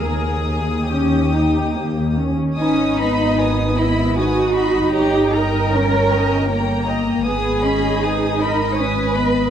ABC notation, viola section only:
X:1
M:3/4
L:1/8
Q:1/4=77
K:G#m
V:1 name="Viola section"
[A,A]2 C D A, C | C B,3 D2- | D2 C2 A,2 | B, C D2 C B, |]